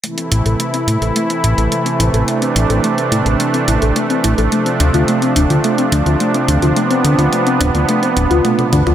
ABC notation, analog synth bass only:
X:1
M:4/4
L:1/16
Q:1/4=107
K:Am
V:1 name="Analog synth bass" clef=bass
z2 A,,, A,,, z2 A,, A,,, z2 A,,, A,,, z2 A,,, A,,, | z2 A,,, A,,, z2 A,, A,,, z2 A,,, A,,, z2 A,,, A,,, | z2 D,, D,, z2 D,,, D,, z2 D,, D,, z2 D,, D,, | z2 D,, D,, z2 D,,, D,, z2 D,,, D,, z2 D,, D,, |]